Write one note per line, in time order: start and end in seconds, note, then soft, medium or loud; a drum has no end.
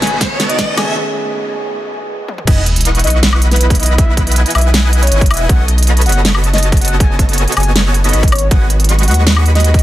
0.00 0.96 F#1 medium
0.00 0.95 C#3 medium
0.00 0.56 D#3 medium
0.00 0.56 A3 medium
0.00 0.95 A3 medium
0.00 0.38 B3 medium
0.00 0.57 B3 medium
0.00 0.92 B3 medium
0.00 0.57 C#4 medium
0.00 0.38 F#4 medium
0.00 0.38 A4 medium
0.00 0.38 C#5 medium
0.00 0.38 D#5 medium
0.00 0.92 D#5 medium
0.00 0.58 G#5 medium
0.00 0.17 G#5 medium
0.00 0.38 B5 medium
0.00 snare medium
0.00 closed hi-hat soft
0.00 riser medium
0.07 closed hi-hat medium
0.21 kick loud
0.21 snare medium
0.21 closed hi-hat medium
0.40 0.96 B3 medium
0.40 0.96 F#4 medium
0.40 0.96 A4 medium
0.40 0.96 C#5 medium
0.40 0.96 D#5 medium
0.40 0.96 A5 medium
0.40 snare medium
0.40 closed hi-hat medium
0.49 0.72 D#5 loud
0.49 closed hi-hat medium
0.58 0.75 D#3 loud
0.58 0.75 A3 medium
0.58 0.75 B3 medium
0.58 0.76 C#4 medium
0.58 0.76 B4 loud
0.58 kick loud
0.58 snare medium
0.58 closed hi-hat medium
0.77 0.93 D#3 loud
0.77 0.94 A3 medium
0.77 0.94 B3 medium
0.77 0.95 C#4 medium
0.77 0.95 G#4 loud
0.77 0.93 G#5 medium
0.77 snare medium
0.77 closed hi-hat medium
0.77 high woodblock medium
0.94 1.88 D#3 medium
0.94 1.88 A3 medium
0.94 1.89 B3 medium
0.94 1.89 C#4 medium
0.94 1.90 G#4 medium
2.28 high tom medium
2.38 mid tom medium
2.47 3.05 E1 loud
2.47 5.46 B2 medium
2.47 5.46 E3 medium
2.47 2.60 E4 loud
2.47 5.46 E4 medium
2.47 2.60 B4 medium
2.47 2.60 D#5 medium
2.47 2.63 D#5 loud
2.47 8.28 D#5 medium
2.47 2.60 F#5 medium
2.47 2.60 G#5 loud
2.47 kick loud
2.47 closed hi-hat medium
2.47 crash loud
2.47 sub drop medium
2.66 closed hi-hat medium
2.76 closed hi-hat medium
2.81 closed hi-hat medium
2.85 3.40 E4 medium
2.85 3.40 B4 medium
2.85 3.40 D#5 medium
2.85 3.40 F#5 medium
2.85 3.40 C#6 medium
2.85 closed hi-hat medium
2.95 closed hi-hat medium
2.99 closed hi-hat medium
3.04 4.45 B1 medium
3.04 3.19 D#5 medium
3.04 closed hi-hat soft
3.07 closed hi-hat medium
3.10 closed hi-hat medium
3.23 snare loud
3.23 closed hi-hat medium
3.33 high woodblock medium
3.42 4.34 E4 medium
3.42 4.34 B4 medium
3.42 4.34 D#5 medium
3.42 4.34 F#5 medium
3.42 4.34 B5 medium
3.42 closed hi-hat medium
3.51 3.74 B4 loud
3.51 snare soft
3.51 closed hi-hat medium
3.56 closed hi-hat medium
3.61 closed hi-hat medium
3.70 kick loud
3.70 closed hi-hat medium
3.75 closed hi-hat medium
3.79 4.00 D#5 loud
3.79 closed hi-hat medium
3.83 closed hi-hat medium
3.86 closed hi-hat medium
3.98 4.13 E5 loud
3.98 kick loud
3.98 closed hi-hat medium
4.17 kick medium
4.17 closed hi-hat medium
4.27 closed hi-hat medium
4.32 closed hi-hat medium
4.36 4.91 E4 medium
4.36 4.91 B4 medium
4.36 4.91 D#5 medium
4.36 4.91 F#5 medium
4.36 4.91 G#5 medium
4.36 closed hi-hat medium
4.46 closed hi-hat medium
4.50 closed hi-hat medium
4.55 5.10 B1 medium
4.55 4.70 E5 medium
4.55 closed hi-hat medium
4.55 high woodblock medium
4.58 closed hi-hat medium
4.61 closed hi-hat medium
4.74 snare loud
4.74 closed hi-hat medium
4.93 5.47 E4 medium
4.93 5.47 B4 medium
4.93 5.47 D#5 medium
4.93 5.47 F#5 medium
4.93 5.47 G#5 loud
4.93 closed hi-hat medium
5.02 5.25 C#5 loud
5.02 closed hi-hat medium
5.07 closed hi-hat medium
5.11 5.29 G#1 loud
5.11 closed hi-hat medium
5.21 kick loud
5.21 closed hi-hat medium
5.26 closed hi-hat medium
5.30 5.48 E1 loud
5.30 5.46 E5 loud
5.30 closed hi-hat soft
5.30 high woodblock medium
5.34 closed hi-hat medium
5.37 closed hi-hat medium
5.49 6.07 B1 loud
5.49 8.30 C#3 medium
5.49 8.29 A3 medium
5.49 5.62 B3 loud
5.49 9.83 B3 medium
5.49 5.62 A4 medium
5.49 5.62 D#5 medium
5.49 5.64 F#5 loud
5.49 kick loud
5.49 closed hi-hat medium
5.68 closed hi-hat medium
5.78 closed hi-hat soft
5.83 closed hi-hat medium
5.87 6.42 B3 medium
5.87 6.42 F#4 medium
5.87 6.42 A4 medium
5.87 6.42 C#5 medium
5.87 6.42 D#5 medium
5.87 6.42 B5 medium
5.87 closed hi-hat medium
5.97 closed hi-hat medium
6.01 closed hi-hat medium
6.06 7.46 F#1 medium
6.06 6.21 F#5 medium
6.06 closed hi-hat soft
6.09 closed hi-hat medium
6.12 closed hi-hat medium
6.25 snare loud
6.25 closed hi-hat medium
6.35 high woodblock medium
6.44 7.36 B3 medium
6.44 7.36 F#4 medium
6.44 7.36 A4 medium
6.44 7.36 C#5 medium
6.44 7.36 D#5 medium
6.44 7.36 A5 medium
6.44 closed hi-hat medium
6.53 6.76 D#5 medium
6.53 snare soft
6.53 closed hi-hat soft
6.58 closed hi-hat medium
6.63 closed hi-hat medium
6.72 kick loud
6.72 closed hi-hat medium
6.77 closed hi-hat medium
6.81 6.96 F#5 loud
6.81 closed hi-hat medium
6.85 closed hi-hat medium
6.88 closed hi-hat medium
7.00 7.15 G#5 loud
7.00 kick loud
7.00 closed hi-hat medium
7.19 kick medium
7.19 closed hi-hat medium
7.29 closed hi-hat soft
7.33 closed hi-hat medium
7.38 7.93 B3 medium
7.38 7.93 F#4 medium
7.38 7.93 A4 medium
7.38 7.93 C#5 medium
7.38 7.93 D#5 medium
7.38 7.93 G#5 loud
7.38 closed hi-hat medium
7.48 closed hi-hat soft
7.52 closed hi-hat medium
7.57 8.12 F#1 medium
7.57 7.72 G#5 medium
7.57 closed hi-hat medium
7.57 high woodblock medium
7.60 closed hi-hat medium
7.63 closed hi-hat medium
7.76 snare loud
7.76 closed hi-hat medium
7.94 closed hi-hat medium
8.04 8.25 B3 medium
8.04 8.25 F#4 medium
8.04 8.25 A4 medium
8.04 8.25 C#5 medium
8.04 8.27 D#5 loud
8.04 8.25 D#5 medium
8.04 8.25 B5 medium
8.04 closed hi-hat soft
8.09 closed hi-hat medium
8.13 8.50 G#1 medium
8.13 closed hi-hat medium
8.23 kick loud
8.23 closed hi-hat soft
8.28 closed hi-hat medium
8.32 9.83 D#3 medium
8.32 9.83 F#3 medium
8.32 9.83 F#4 medium
8.32 8.47 C#5 loud
8.32 closed hi-hat soft
8.32 high woodblock medium
8.35 closed hi-hat medium
8.38 closed hi-hat medium
8.51 9.09 G#1 loud
8.51 8.64 G#3 medium
8.51 8.64 F#4 medium
8.51 8.64 B4 medium
8.51 8.64 D#5 medium
8.51 8.66 F#5 loud
8.51 8.64 G#5 loud
8.51 kick loud
8.51 closed hi-hat medium
8.70 closed hi-hat medium
8.80 closed hi-hat soft
8.84 closed hi-hat medium
8.89 9.43 G#3 medium
8.89 9.43 F#4 medium
8.89 9.43 B4 medium
8.89 9.43 D#5 medium
8.89 9.43 C#6 medium
8.89 closed hi-hat medium
8.99 closed hi-hat medium
9.03 closed hi-hat medium
9.08 9.83 D#2 medium
9.08 9.23 F#5 medium
9.08 closed hi-hat soft
9.11 closed hi-hat medium
9.14 closed hi-hat medium
9.27 snare loud
9.27 closed hi-hat medium
9.36 high woodblock medium
9.45 9.83 G#3 medium
9.45 9.83 F#4 medium
9.45 9.83 B4 medium
9.45 9.83 D#5 medium
9.45 9.83 B5 medium
9.45 closed hi-hat medium
9.55 9.83 D#5 loud
9.55 snare soft
9.55 closed hi-hat soft
9.60 closed hi-hat medium
9.64 closed hi-hat medium
9.74 kick loud
9.74 closed hi-hat soft
9.79 closed hi-hat medium